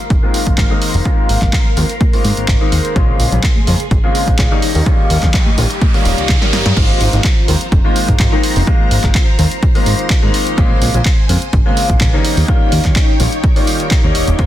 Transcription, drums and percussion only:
0.10 kick loud
0.10 closed hi-hat soft
0.23 tambourine soft
0.34 open hi-hat loud
0.34 tambourine medium
0.47 kick medium
0.58 kick loud
0.58 clap loud
0.58 closed hi-hat soft
0.82 open hi-hat loud
0.82 tambourine medium
0.94 open hi-hat medium
1.05 kick loud
1.05 closed hi-hat soft
1.05 tambourine medium
1.29 open hi-hat medium
1.29 tambourine medium
1.42 kick medium
1.42 clap soft
1.42 tambourine soft
1.42 low conga medium
1.53 kick loud
1.53 clap loud
1.53 closed hi-hat medium
1.53 tambourine medium
1.66 tambourine soft
1.77 open hi-hat loud
1.77 tambourine medium
1.90 closed hi-hat medium
1.90 tambourine soft
2.01 kick loud
2.01 closed hi-hat soft
2.01 tambourine soft
2.01 high conga medium
2.13 open hi-hat medium
2.13 tambourine soft
2.24 open hi-hat loud
2.24 tambourine medium
2.37 closed hi-hat medium
2.37 tambourine soft
2.48 kick loud
2.48 clap loud
2.48 closed hi-hat medium
2.72 open hi-hat loud
2.72 tambourine medium
2.85 closed hi-hat medium
2.85 tambourine soft
2.96 kick loud
2.96 closed hi-hat medium
3.20 open hi-hat loud
3.32 closed hi-hat medium
3.32 tambourine soft
3.32 low conga medium
3.44 kick loud
3.44 clap loud
3.44 closed hi-hat medium
3.56 tambourine soft
3.56 high conga medium
3.67 open hi-hat loud
3.67 tambourine medium
3.80 closed hi-hat medium
3.80 tambourine soft
3.91 kick loud
3.91 closed hi-hat medium
3.91 tambourine medium
4.04 tambourine soft
4.15 open hi-hat loud
4.15 tambourine loud
4.28 kick medium
4.28 closed hi-hat medium
4.39 kick loud
4.39 clap loud
4.39 closed hi-hat medium
4.62 open hi-hat loud
4.62 tambourine medium
4.75 open hi-hat medium
4.75 tambourine soft
4.86 kick loud
4.86 closed hi-hat medium
4.86 tambourine medium
4.99 tambourine soft
5.10 open hi-hat loud
5.10 tambourine medium
5.23 kick medium
5.23 clap soft
5.23 tambourine soft
5.23 low conga medium
5.34 kick loud
5.34 clap loud
5.34 closed hi-hat medium
5.34 tambourine medium
5.46 tambourine soft
5.46 high conga medium
5.58 open hi-hat loud
5.58 tambourine medium
5.70 closed hi-hat medium
5.70 tambourine soft
5.82 kick loud
5.82 closed hi-hat medium
5.82 tambourine medium
5.82 high conga medium
5.94 open hi-hat medium
5.94 tambourine soft
6.05 open hi-hat loud
6.05 tambourine loud
6.18 closed hi-hat medium
6.18 tambourine soft
6.29 kick loud
6.29 snare medium
6.29 clap loud
6.29 closed hi-hat medium
6.42 snare medium
6.52 snare medium
6.52 open hi-hat loud
6.52 tambourine medium
6.66 snare medium
6.66 closed hi-hat medium
6.77 kick loud
6.77 closed hi-hat medium
6.77 crash loud
7.01 open hi-hat loud
7.13 closed hi-hat medium
7.24 kick loud
7.24 clap loud
7.24 closed hi-hat medium
7.48 open hi-hat loud
7.61 closed hi-hat medium
7.72 kick loud
7.72 closed hi-hat medium
7.96 open hi-hat loud
8.09 kick medium
8.09 closed hi-hat medium
8.20 kick loud
8.20 clap loud
8.20 closed hi-hat medium
8.43 open hi-hat loud
8.56 open hi-hat medium
8.67 kick loud
8.67 closed hi-hat medium
8.91 open hi-hat loud
9.04 kick medium
9.04 clap soft
9.15 kick loud
9.15 clap loud
9.15 closed hi-hat medium
9.39 open hi-hat loud
9.52 closed hi-hat medium
9.63 kick loud
9.63 closed hi-hat medium
9.75 open hi-hat medium
9.86 open hi-hat loud
9.99 closed hi-hat medium
10.10 kick loud
10.10 clap loud
10.10 closed hi-hat medium
10.34 open hi-hat loud
10.47 closed hi-hat medium
10.58 kick loud
10.58 closed hi-hat medium
10.82 open hi-hat loud
10.94 closed hi-hat medium
11.05 kick loud
11.05 clap loud
11.05 closed hi-hat medium
11.29 open hi-hat loud
11.42 closed hi-hat medium
11.53 kick loud
11.53 closed hi-hat soft
11.77 open hi-hat loud
11.90 kick medium
11.90 closed hi-hat medium
12.01 kick loud
12.01 clap loud
12.01 closed hi-hat medium
12.25 open hi-hat loud
12.37 open hi-hat medium
12.48 kick loud
12.48 closed hi-hat soft
12.72 open hi-hat loud
12.85 kick medium
12.85 clap soft
12.85 closed hi-hat medium
12.96 kick loud
12.96 clap loud
12.96 closed hi-hat medium
13.20 open hi-hat loud
13.32 closed hi-hat medium
13.44 kick loud
13.44 closed hi-hat soft
13.56 open hi-hat medium
13.67 open hi-hat loud
13.80 closed hi-hat medium
13.91 kick loud
13.91 clap loud
13.91 closed hi-hat soft
14.15 open hi-hat loud
14.28 closed hi-hat medium
14.39 kick loud
14.39 closed hi-hat soft

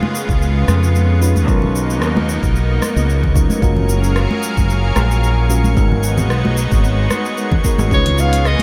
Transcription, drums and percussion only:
0.03 high conga medium
0.15 shaker medium
0.29 kick medium
0.29 shaker soft
0.42 shaker soft
0.68 cross-stick medium
0.68 high conga medium
0.68 shaker medium
0.83 shaker soft
0.95 shaker soft
1.22 shaker medium
1.36 high conga medium
1.36 shaker soft
1.48 kick loud
1.48 shaker soft
1.62 low conga medium
1.76 shaker medium
1.90 shaker soft
2.02 cross-stick medium
2.02 shaker soft
2.17 high conga medium
2.29 shaker medium
2.43 kick loud
2.43 shaker soft
2.56 shaker soft
2.82 cross-stick medium
2.82 high conga medium
2.82 shaker medium
2.97 shaker soft
3.10 shaker soft
3.23 kick medium
3.23 low conga medium
3.36 kick loud
3.36 shaker medium
3.50 high conga medium
3.50 shaker soft
3.62 kick loud
3.62 shaker soft
3.76 low conga medium
3.89 shaker medium
4.04 shaker soft
4.16 cross-stick medium
4.16 shaker soft
4.31 high conga medium
4.43 shaker medium
4.57 kick loud
4.57 shaker soft
4.70 shaker soft
4.96 cross-stick medium
4.96 high conga medium
4.96 shaker medium
5.11 shaker soft
5.24 shaker soft
5.50 shaker medium
5.64 high conga medium
5.64 shaker soft
5.77 kick loud
5.77 shaker soft
5.92 low conga medium
6.04 shaker medium
6.17 low conga medium
6.17 shaker soft
6.30 cross-stick medium
6.30 shaker soft
6.45 high conga medium
6.57 shaker medium
6.72 kick loud
6.72 shaker soft
6.84 shaker soft
7.11 cross-stick medium
7.11 high conga medium
7.11 shaker medium
7.25 shaker soft
7.37 shaker soft
7.51 kick medium
7.51 low conga medium
7.64 kick loud
7.64 shaker medium
7.78 high conga medium
7.78 shaker soft
7.91 kick loud
7.91 shaker soft
8.06 closed hi-hat soft
8.06 low conga medium
8.18 shaker medium
8.33 closed hi-hat medium
8.33 shaker soft
8.45 cross-stick medium
8.45 shaker soft
8.59 closed hi-hat soft
8.59 high conga medium

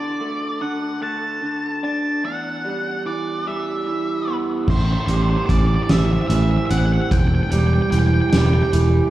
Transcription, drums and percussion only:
4.68 kick medium
4.68 crash loud
5.08 closed hi-hat medium
5.49 kick medium
5.49 closed hi-hat medium
5.89 snare medium
5.89 closed hi-hat medium
6.30 closed hi-hat medium
6.71 closed hi-hat medium
7.11 kick loud
7.11 closed hi-hat medium
7.52 closed hi-hat medium
7.92 closed hi-hat medium
8.33 snare medium
8.33 closed hi-hat medium
8.73 closed hi-hat medium

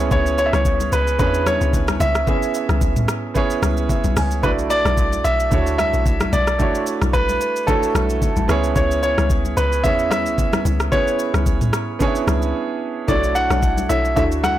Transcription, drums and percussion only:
0.11 kick loud
0.11 low conga medium
0.11 shaker medium
0.26 shaker medium
0.38 shaker medium
0.53 cross-stick medium
0.53 high conga medium
0.53 shaker medium
0.65 kick loud
0.65 shaker medium
0.80 high conga soft
0.80 shaker medium
0.92 shaker loud
1.07 shaker soft
1.19 kick loud
1.19 low conga medium
1.19 shaker medium
1.34 shaker medium
1.46 cross-stick medium
1.46 high conga medium
1.46 shaker medium
1.61 shaker medium
1.73 kick medium
1.73 low conga medium
1.73 shaker medium
1.88 cross-stick loud
1.88 high conga medium
1.88 shaker medium
2.00 high conga medium
2.00 low conga medium
2.00 shaker loud
2.15 cross-stick medium
2.15 shaker medium
2.27 kick loud
2.27 low conga medium
2.27 shaker medium
2.43 shaker medium
2.54 shaker medium
2.69 cross-stick medium
2.69 high conga medium
2.69 shaker medium
2.81 kick loud
2.81 shaker medium
2.96 mid tom medium
2.96 high conga soft
2.96 shaker medium
3.08 cross-stick loud
3.08 shaker loud
3.35 kick loud
3.35 low conga medium
3.35 shaker medium
3.50 shaker medium
3.63 cross-stick loud
3.63 high conga medium
3.63 shaker medium
3.77 shaker medium
3.89 kick medium
3.89 low conga medium
3.89 shaker medium
4.04 high conga medium
4.04 shaker medium
4.17 cross-stick loud
4.17 open hi-hat medium
4.17 high conga medium
4.17 low conga medium
4.17 shaker loud
4.31 shaker medium
4.43 kick loud
4.43 low conga medium
4.43 shaker medium
4.59 shaker medium
4.71 shaker medium
4.85 cross-stick medium
4.85 high conga medium
4.85 shaker medium
4.97 kick loud
4.97 shaker medium
5.12 high conga soft
5.12 shaker medium
5.25 shaker loud
5.40 shaker soft
5.52 kick loud
5.52 low conga medium
5.52 shaker medium
5.67 shaker medium
5.79 cross-stick medium
5.79 high conga medium
5.79 shaker medium
5.94 shaker medium
6.06 kick medium
6.06 low conga medium
6.06 shaker medium
6.20 cross-stick loud
6.20 high conga medium
6.20 shaker medium
6.33 high conga medium
6.33 low conga medium
6.33 shaker loud
6.47 cross-stick medium
6.47 shaker medium
6.60 kick loud
6.60 low conga medium
6.60 shaker medium
6.75 shaker medium
6.87 shaker medium
7.02 cross-stick medium
7.02 high conga medium
7.02 shaker medium
7.14 kick loud
7.14 shaker medium
7.29 high conga soft
7.29 shaker medium
7.41 shaker medium
7.56 shaker soft
7.68 kick loud
7.68 low conga medium
7.68 shaker medium
7.83 shaker medium
7.95 cross-stick medium
7.95 high conga medium
7.95 shaker medium
8.10 shaker medium
8.22 kick medium
8.22 low conga medium
8.22 shaker medium
8.37 high conga medium
8.37 shaker medium
8.49 cross-stick loud
8.49 high conga medium
8.49 low conga medium
8.49 shaker loud
8.64 shaker medium
8.76 kick loud
8.76 low conga medium
8.76 shaker medium
8.91 shaker medium
9.03 shaker medium
9.18 cross-stick medium
9.18 high conga medium
9.18 shaker soft
9.30 kick loud
9.30 shaker medium
9.45 high conga soft
9.45 shaker medium
9.57 shaker loud
9.72 shaker soft
9.84 kick loud
9.84 low conga medium
9.84 shaker medium
9.99 shaker medium
10.11 cross-stick loud
10.11 high conga medium
10.11 shaker medium
10.26 shaker medium
10.38 kick medium
10.38 low conga medium
10.38 shaker medium
10.53 cross-stick loud
10.53 high conga medium
10.53 shaker medium
10.65 high conga medium
10.65 low conga medium
10.65 shaker loud
10.80 cross-stick medium
10.80 shaker medium
10.92 kick loud
10.92 low conga medium
10.92 shaker medium
11.07 shaker medium
11.19 shaker medium
11.34 cross-stick medium
11.34 high conga medium
11.34 shaker soft
11.46 kick loud
11.46 shaker medium
11.61 mid tom medium
11.61 high conga soft
11.61 shaker medium
11.73 cross-stick loud
11.73 shaker medium
12.00 kick loud
12.00 low conga medium
12.00 shaker medium
12.15 shaker medium
12.27 cross-stick medium
12.27 high conga medium
12.27 shaker medium
12.42 shaker medium
13.08 kick loud
13.08 low conga medium
13.08 shaker medium
13.24 shaker medium
13.35 shaker medium
13.50 cross-stick medium
13.50 high conga medium
13.50 shaker medium
13.63 kick loud
13.63 shaker medium
13.77 high conga soft
13.77 shaker medium
13.90 shaker medium
14.05 shaker soft
14.17 kick loud
14.17 low conga medium
14.17 shaker medium
14.32 shaker medium
14.44 cross-stick medium
14.44 high conga medium
14.44 shaker medium

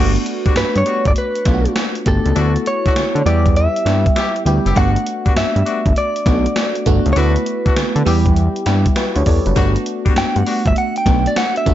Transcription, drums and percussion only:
0.16 closed hi-hat medium
0.26 closed hi-hat medium
0.46 kick medium
0.46 closed hi-hat soft
0.56 snare loud
0.56 closed hi-hat medium
0.76 closed hi-hat soft
0.86 closed hi-hat medium
1.05 kick loud
1.05 closed hi-hat medium
1.16 closed hi-hat medium
1.35 closed hi-hat soft
1.45 kick loud
1.45 snare medium
1.45 closed hi-hat medium
1.65 closed hi-hat medium
1.76 snare loud
1.76 closed hi-hat medium
1.95 closed hi-hat soft
2.06 kick loud
2.06 closed hi-hat medium
2.26 closed hi-hat medium
2.36 closed hi-hat medium
2.56 closed hi-hat medium
2.66 closed hi-hat medium
2.86 kick medium
2.86 closed hi-hat soft
2.96 snare loud
2.96 closed hi-hat medium
3.16 closed hi-hat medium
3.26 closed hi-hat medium
3.46 kick loud
3.46 closed hi-hat medium
3.56 closed hi-hat medium
3.76 closed hi-hat soft
3.86 snare medium
3.86 closed hi-hat medium
4.06 kick loud
4.06 closed hi-hat medium
4.16 snare loud
4.16 closed hi-hat medium
4.36 closed hi-hat soft
4.46 closed hi-hat medium
4.66 closed hi-hat medium
4.76 kick loud
4.76 closed hi-hat medium
4.96 closed hi-hat medium
5.07 closed hi-hat medium
5.26 kick medium
5.26 closed hi-hat soft
5.37 snare loud
5.37 closed hi-hat medium
5.56 closed hi-hat soft
5.66 closed hi-hat medium
5.86 kick loud
5.86 closed hi-hat medium
5.96 closed hi-hat medium
6.16 closed hi-hat soft
6.26 kick loud
6.26 snare medium
6.26 closed hi-hat medium
6.46 closed hi-hat medium
6.56 snare loud
6.56 closed hi-hat medium
6.75 closed hi-hat soft
6.86 kick loud
6.86 closed hi-hat medium
7.06 closed hi-hat medium
7.16 closed hi-hat medium
7.36 closed hi-hat soft
7.46 closed hi-hat medium
7.66 kick loud
7.66 closed hi-hat soft
7.76 snare loud
7.76 closed hi-hat medium
7.96 closed hi-hat medium
8.06 open hi-hat medium
8.26 kick loud
8.26 closed hi-hat medium
8.36 closed hi-hat medium
8.56 closed hi-hat soft
8.66 snare medium
8.66 closed hi-hat medium
8.86 kick medium
8.86 closed hi-hat medium
8.96 snare loud
8.96 closed hi-hat medium
9.16 closed hi-hat soft
9.26 kick medium
9.26 open hi-hat medium
9.46 closed hi-hat medium
9.56 kick loud
9.56 closed hi-hat medium
9.76 closed hi-hat soft
9.86 closed hi-hat medium
10.06 kick loud
10.06 closed hi-hat soft
10.16 snare loud
10.16 closed hi-hat medium
10.36 closed hi-hat soft
10.46 open hi-hat medium
10.66 kick loud
10.66 closed hi-hat medium
10.76 closed hi-hat medium
10.96 closed hi-hat soft
11.06 kick loud
11.06 snare medium
11.06 closed hi-hat medium
11.26 closed hi-hat medium
11.36 snare loud
11.36 closed hi-hat medium
11.56 closed hi-hat soft
11.66 kick medium
11.66 closed hi-hat medium

